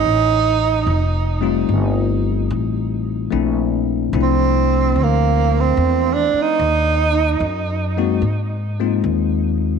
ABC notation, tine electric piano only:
X:1
M:4/4
L:1/8
Q:"Swing" 1/4=74
K:Bbdor
V:1 name="Tine electric piano"
z3 [G,=A,CEF]3 z2 | [F,=A,C=D=E] z [F,A,CDE] z4 z | z3 [A,B,CE_G] z [A,B,CEF] z2 |]